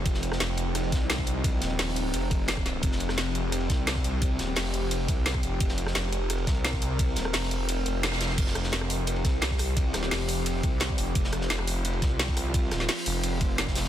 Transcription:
<<
  \new Staff \with { instrumentName = "Synth drone" } { \time 4/4 \key c \phrygian \tempo 4 = 173 << { ees'1~ | ees'1 | g'1~ | g'1 |
bes'1~ | bes'1 | g'1~ | g'1 |
f'1~ | f'1 | } \\ { <f c'>1~ | <f c'>1~ | <f c'>1~ | <f c'>1~ |
<f c'>1~ | <f c'>1 | <f c'>1~ | <f c'>1~ |
<f c'>1~ | <f c'>1 | } >> }
  \new Staff \with { instrumentName = "Detuned saw bass" } { \clef bass \time 4/4 \key c \phrygian f,,4 f,,4. c,4 c,8~ | c,8 ees,,8 ees,,4 f,,2 | f,,4 f,,4. c,4 c,8~ | c,8 ees,,8 f,,4. c,4 f,,8 |
f,,4 f,,4. c,4 c,8~ | c,8 ees,,8 f,,4. f,,4. | f,,4 f,,4. c,4 c,8~ | c,8 ees,,8 f,,4. c,4 f,,8 |
f,,4 f,,4. c,4 c,8~ | c,8 ees,,8 r8 f,,4. f,,4 | }
  \new DrumStaff \with { instrumentName = "Drums" } \drummode { \time 4/4 <hh bd cymr>16 sn16 <hh cymr>16 <ss sn>16 <hh cymr sn>16 cymr16 <hh cymr>8 <hh cymr ss>16 cymr16 <hh bd cymr sn>8 <hh cymr sn>16 <bd sn>16 <hh cymr>8 | <hh bd cymr>8 <hh cymr sn>8 <hh hho sn>16 sn16 <hh cymr>8 <hh cymr>8 <hh bd cymr>8 <hh cymr sn>16 <bd ss>16 <hh cymr sn>8 | <hh bd cymr>16 sn16 <hh cymr>16 <ss sn>16 <hh cymr sn>16 cymr16 <hh cymr>8 <hh cymr ss>16 cymr16 <hh bd cymr sn>8 <hh cymr sn>16 <bd sn>16 <hh cymr>8 | <hh bd cymr>8 <hh cymr sn>8 <hh hho sn>16 sn16 <hh cymr>8 <hh cymr>8 <hh bd cymr>8 <hh cymr sn>16 <bd ss>16 <hh cymr>8 |
<hh bd cymr>16 sn16 <hh cymr>16 <ss sn>16 <hh cymr sn>16 cymr16 <hh cymr>8 <hh cymr ss>16 cymr16 <hh bd cymr sn>8 <hh cymr sn>16 <bd sn>16 <hh cymr>8 | <hh bd cymr>8 <hh cymr sn>16 ss16 <hh hho sn>16 sn16 <hh cymr>8 <hh cymr>8 <hh cymr>8 <hh cymr sn>16 <cymr ss sn>16 <hh cymr sn>16 sn16 | <cymc hh bd cymr>16 sn16 <hh cymr ss>16 sn16 <hh cymr sn>16 <cymr ss>16 <hho cymr>8 <hh cymr>16 cymr16 <hh bd cymr sn>8 <hh cymr sn>16 <bd sn>16 <hho cymr ss>8 | <hh bd cymr>8 <hh cymr ss sn>16 sn16 <hh hho sn>16 sn16 <hho cymr>8 <hh cymr>8 <hh bd cymr>8 <hh cymr sn>16 bd16 <hho cymr>8 |
<hh bd cymr>16 sn16 <hh cymr ss>16 sn16 <hh cymr sn>16 <cymr ss>16 <hho cymr>8 <hh cymr>16 cymr16 <hh bd cymr sn>8 <hh cymr sn>16 <bd sn>16 <hho cymr ss>8 | <hh bd cymr>8 <hh cymr ss sn>16 sn16 <hh hho sn>16 sn16 <hho cymr>8 <hh cymr>8 <hh bd cymr>8 <hh sn>16 <bd sn>16 <hho sn>16 sn16 | }
>>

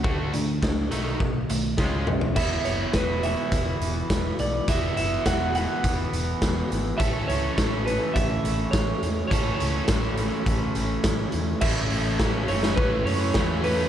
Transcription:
<<
  \new Staff \with { instrumentName = "Clean electric guitar" } { \time 4/4 \key e \mixolydian \tempo 4 = 104 fis''2. r4 | e''8 cis''8 b'8 e''2 d''8 | e''8 e''8 fis''8 fis''2 r8 | e''8 cis''4 b'8 e''4 cis''4 |
cis''2. r4 | e''4. cis''8 b'8 cis''4 b'8 | }
  \new Staff \with { instrumentName = "Overdriven electric guitar" } { \time 4/4 \key e \mixolydian <a d' fis'>8 <a d'>8 <a d'>8 <dis a dis'>8 <dis a>8 <dis a>8 <gis cis' eis'>8 <gis cis'>8 | <e b e' fis'>1 | <e b e' fis'>1 | <e a cis' a'>1 |
<e a cis' a'>1 | <e a cis'>4 <e a cis'>8 <e a cis'>8 <e a cis'>4 <e a cis'>8 <e a cis'>8 | }
  \new Staff \with { instrumentName = "Picked electric bass" } { \clef bass \time 4/4 \key e \mixolydian d,8 d,8 cis,8 b,,8 b,,8 b,,8 cis,8 b,,8 | e,,8 fis,,8 e,,4 e,,8 e,,8 e,,8 b,,8 | e,,8 fis,,8 e,,4 e,,8 e,,8 e,,8 gis,,8 | a,,8 cis,8 a,,4 a,,8 a,,8 a,,8 e,8 |
a,,8 cis,8 a,,4 a,,8 a,,8 a,,8 e,8 | a,,8 a,,8 a,,8 fis,,8 a,,8 fis,8 e,4 | }
  \new DrumStaff \with { instrumentName = "Drums" } \drummode { \time 4/4 bd8 hh8 <bd sn>8 hh8 bd8 hh8 <bd sn>8 toml16 tomfh16 | <cymc bd>8 hh8 <hh bd sn>8 hh8 <hh bd>8 hh8 <hh bd sn>8 hh8 | <hh bd>8 hh8 <hh bd sn>8 hh8 <hh bd>8 hh8 <hh bd sn>8 hh8 | <hh bd>8 hh8 <hh bd sn>8 hh8 <hh bd>8 hh8 <hh bd sn>8 hh8 |
<hh bd>8 hh8 <hh bd sn>8 hh8 <hh bd>8 hh8 <hh bd sn>8 hh8 | <cymc bd>8 hho8 <bd sn>8 hho16 sn16 bd8 hho8 <bd sn>8 hho8 | }
>>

